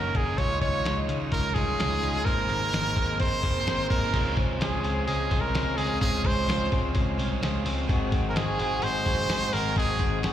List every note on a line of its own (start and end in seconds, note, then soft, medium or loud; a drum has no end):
0.00 0.11 F#1 medium
0.00 0.14 D#3 medium
0.00 0.27 F#3 medium
0.00 0.43 A#3 medium
0.00 0.27 C#4 medium
0.00 0.43 C#4 medium
0.00 0.26 D#4 medium
0.00 0.18 A#4 medium
0.00 0.24 A#4 medium
0.15 0.34 F#1 medium
0.15 0.37 D#3 medium
0.15 0.40 G#4 medium
0.15 kick medium
0.15 closed hi-hat medium
0.26 0.38 C#4 soft
0.26 0.38 D#4 soft
0.26 0.38 A#4 medium
0.36 0.58 C#2 loud
0.36 0.74 C#3 medium
0.36 2.24 D#3 medium
0.36 0.74 G#3 medium
0.36 2.21 C#4 medium
0.36 0.74 C#4 medium
0.36 2.22 D#4 medium
0.36 0.73 D#4 medium
0.36 1.31 F4 medium
0.36 0.72 F4 medium
0.36 2.23 F4 medium
0.36 0.61 C#5 loud
0.36 kick loud
0.36 closed hi-hat medium
0.61 0.81 C#2 medium
0.61 1.08 D#4 medium
0.61 1.02 C#5 medium
0.61 kick medium
0.61 snare soft
0.61 closed hi-hat medium
0.73 1.08 C#4 soft
0.73 1.08 D#4 soft
0.73 1.09 F4 soft
0.84 1.05 C#2 loud
0.84 2.01 G#3 medium
0.84 snare loud
0.84 closed hi-hat medium
1.08 1.28 C#2 medium
1.08 1.54 G#3 medium
1.08 1.20 C#4 medium
1.08 1.55 C#4 medium
1.08 1.56 D#4 medium
1.08 1.56 F4 medium
1.08 closed hi-hat medium
1.20 1.54 D#4 medium
1.32 1.52 C#2 loud
1.32 1.78 F4 medium
1.32 1.56 A#4 medium
1.32 kick medium
1.32 closed hi-hat medium
1.54 1.75 C2 medium
1.54 1.78 G#3 medium
1.54 1.79 C#4 medium
1.54 2.25 D#4 medium
1.54 1.79 D#4 medium
1.54 1.80 F4 medium
1.54 2.26 G#4 medium
1.54 kick medium
1.54 closed hi-hat medium
1.79 1.99 C#2 medium
1.79 2.14 G#3 medium
1.79 2.15 C#4 medium
1.79 2.14 D#4 medium
1.79 2.31 F4 medium
1.79 2.13 F4 medium
1.79 snare loud
1.79 closed hi-hat medium
2.02 2.23 C#2 medium
2.02 2.49 G#3 medium
2.02 closed hi-hat medium
2.14 2.26 C#4 soft
2.14 2.25 D#4 medium
2.14 2.26 F4 soft
2.23 2.46 G#1 loud
2.23 2.72 D#3 medium
2.23 2.61 G#3 medium
2.23 4.09 A#3 medium
2.23 4.10 C4 medium
2.23 3.19 C4 medium
2.23 2.61 C4 medium
2.23 2.61 D#4 medium
2.23 4.11 G#4 medium
2.23 3.20 A#4 loud
2.23 2.60 A#4 medium
2.23 kick loud
2.23 closed hi-hat medium
2.49 2.69 G#1 medium
2.49 2.95 A#3 medium
2.49 snare soft
2.49 closed hi-hat medium
2.61 2.95 C4 soft
2.61 2.97 D#4 soft
2.61 2.97 A#4 medium
2.73 2.93 G#1 loud
2.73 3.89 D#3 medium
2.73 snare loud
2.73 closed hi-hat medium
2.96 3.16 G#1 loud
2.96 3.43 G#3 medium
2.96 3.41 A#3 medium
2.96 3.43 C4 medium
2.96 3.43 D#4 medium
2.96 3.44 A#4 medium
2.96 kick medium
2.96 closed hi-hat medium
3.20 3.40 G#1 medium
3.20 3.66 C4 medium
3.20 3.87 C5 loud
3.20 kick medium
3.20 closed hi-hat medium
3.42 3.63 F#1 medium
3.42 3.65 G#3 medium
3.42 4.13 A#3 medium
3.42 3.65 C4 medium
3.42 3.66 D#4 medium
3.42 3.67 A#4 medium
3.42 kick medium
3.42 closed hi-hat medium
3.66 3.86 G#1 medium
3.66 4.02 G#3 medium
3.66 4.36 C4 medium
3.66 4.02 C4 medium
3.66 4.02 D#4 medium
3.66 4.00 A#4 medium
3.66 snare loud
3.66 closed hi-hat medium
3.90 4.10 G#1 medium
3.90 4.18 D#3 medium
3.90 4.34 A#4 medium
3.90 kick loud
3.90 open hi-hat medium
4.02 4.13 C4 soft
4.02 4.14 D#4 medium
4.02 4.14 A#4 medium
4.12 4.33 C#2 loud
4.12 4.60 C#3 medium
4.12 5.07 G#3 medium
4.12 4.60 G#3 medium
4.12 7.84 C4 medium
4.12 4.61 C4 medium
4.12 7.85 C#4 medium
4.12 4.59 F4 medium
4.12 4.61 F4 medium
4.12 7.86 F4 medium
4.12 4.62 G#4 medium
4.12 kick loud
4.12 open hi-hat medium
4.12 crash medium
4.37 4.57 C#2 loud
4.37 4.83 C4 medium
4.37 kick medium
4.37 open hi-hat medium
4.60 4.81 C#2 medium
4.60 4.82 G#3 medium
4.60 4.83 C4 medium
4.60 5.29 F4 medium
4.60 4.83 F4 medium
4.60 5.04 G#4 medium
4.60 4.84 G#4 medium
4.60 snare loud
4.60 open hi-hat medium
4.83 5.04 C#2 loud
4.83 5.30 G#3 medium
4.83 5.77 C4 medium
4.83 5.31 C4 medium
4.83 5.30 F4 medium
4.83 5.32 G#4 medium
4.83 open hi-hat medium
5.07 5.28 C#2 loud
5.07 5.54 G#3 medium
5.07 5.42 G#4 medium
5.07 open hi-hat medium
5.30 5.51 C2 medium
5.30 5.52 G#3 medium
5.30 5.53 C4 medium
5.30 6.01 F4 medium
5.30 5.54 F4 medium
5.30 5.54 G#4 medium
5.30 kick medium
5.30 open hi-hat medium
5.41 5.79 A#4 medium
5.53 5.74 C#2 medium
5.53 5.76 G#3 medium
5.53 6.01 G#3 medium
5.53 5.77 C4 medium
5.53 5.78 F4 medium
5.53 5.79 G#4 medium
5.53 snare loud
5.53 open hi-hat medium
5.77 5.97 C#2 medium
5.77 6.00 G#3 medium
5.77 6.24 C4 medium
5.77 6.01 C4 medium
5.77 6.01 F4 medium
5.77 6.01 G#4 medium
5.77 open hi-hat medium
6.01 6.21 C#2 loud
6.01 6.48 C#3 medium
6.01 6.47 G#3 medium
6.01 6.95 G#3 medium
6.01 6.48 C4 medium
6.01 6.47 F4 medium
6.01 6.48 F4 medium
6.01 6.28 G#4 loud
6.01 6.50 G#4 medium
6.01 kick loud
6.01 open hi-hat medium
6.25 6.44 C#2 medium
6.25 6.72 C4 medium
6.25 6.73 C5 medium
6.25 kick medium
6.25 open hi-hat medium
6.48 6.68 C#2 loud
6.48 6.70 G#3 medium
6.48 6.71 C4 medium
6.48 7.18 F4 medium
6.48 6.72 F4 medium
6.48 6.72 G#4 medium
6.48 snare loud
6.48 open hi-hat medium
6.71 6.92 C#2 loud
6.71 7.17 G#3 medium
6.71 7.18 C4 medium
6.71 7.66 C4 medium
6.71 7.18 F4 medium
6.71 7.20 G#4 medium
6.71 kick medium
6.71 open hi-hat medium
6.95 7.15 C#2 loud
6.95 7.43 G#3 medium
6.95 kick medium
6.95 open hi-hat medium
7.18 7.38 C2 medium
7.18 7.40 G#3 medium
7.18 7.41 C4 medium
7.18 7.89 F4 medium
7.18 7.42 F4 medium
7.18 7.43 G#4 medium
7.18 open hi-hat medium
7.41 7.62 C#2 loud
7.41 7.64 G#3 medium
7.41 8.39 G#3 medium
7.41 7.65 C4 medium
7.41 7.65 F4 medium
7.41 7.66 G#4 medium
7.41 snare loud
7.41 open hi-hat medium
7.65 7.85 C#2 loud
7.65 7.88 G#3 medium
7.65 8.12 C4 medium
7.65 7.88 C4 medium
7.65 7.88 F4 medium
7.65 7.88 G#4 medium
7.65 open hi-hat medium
7.87 8.09 G#1 loud
7.87 8.35 G#2 medium
7.87 8.36 D#3 medium
7.87 9.76 D#3 medium
7.87 8.34 F#3 medium
7.87 8.34 G#3 medium
7.87 10.33 C4 medium
7.87 8.35 C4 medium
7.87 10.33 F#4 medium
7.87 8.35 F#4 medium
7.87 8.36 G#4 medium
7.87 10.33 G#4 medium
7.87 kick loud
7.87 open hi-hat medium
8.12 8.32 G#1 loud
8.12 8.58 C4 medium
8.12 kick medium
8.12 open hi-hat medium
8.29 8.39 A#4 medium
8.34 8.56 G#1 medium
8.34 8.57 F#3 medium
8.34 8.58 G#3 medium
8.34 8.58 C4 medium
8.34 9.06 F#4 medium
8.34 8.59 G#4 medium
8.34 8.84 G#4 medium
8.34 snare loud
8.34 open hi-hat medium
8.58 8.79 G#1 medium
8.58 9.05 F#3 medium
8.58 9.05 G#3 medium
8.58 9.52 C4 medium
8.58 9.06 C4 medium
8.58 9.06 G#4 medium
8.58 open hi-hat medium
8.82 9.03 G#1 loud
8.82 9.28 G#3 medium
8.82 9.55 C5 loud
8.82 open hi-hat medium
9.05 9.30 F#1 medium
9.05 9.27 F#3 medium
9.05 9.28 G#3 medium
9.05 9.29 C4 medium
9.05 9.77 F#4 medium
9.05 9.30 G#4 medium
9.05 kick medium
9.05 open hi-hat medium
9.28 9.49 G#1 medium
9.28 9.51 F#3 medium
9.28 9.52 G#3 medium
9.28 10.33 G#3 medium
9.28 9.53 C4 medium
9.28 9.54 G#4 medium
9.28 snare loud
9.28 open hi-hat medium
9.52 9.73 G#1 medium
9.52 9.75 F#3 medium
9.52 9.76 G#3 medium
9.52 9.99 C4 medium
9.52 9.76 C4 medium
9.52 9.76 G#4 medium
9.52 9.77 A#4 medium
9.52 open hi-hat medium
9.76 9.96 G#1 loud
9.76 10.23 G#2 medium
9.76 10.23 D#3 medium
9.76 10.33 D#3 medium
9.76 10.22 F#3 medium
9.76 10.22 G#3 medium
9.76 10.23 C4 medium
9.76 10.24 F#4 medium
9.76 10.24 G#4 medium
9.76 10.21 G#4 medium
9.76 kick loud
9.76 open hi-hat medium
9.99 10.19 G#1 medium
9.99 10.33 C4 medium
9.99 kick medium
9.99 snare soft
9.99 open hi-hat medium
10.23 10.33 G#1 loud
10.23 10.33 F#3 medium
10.23 10.33 G#3 medium
10.23 10.33 C4 medium
10.23 10.33 F#4 medium
10.23 10.33 G#4 medium
10.23 snare loud
10.23 open hi-hat medium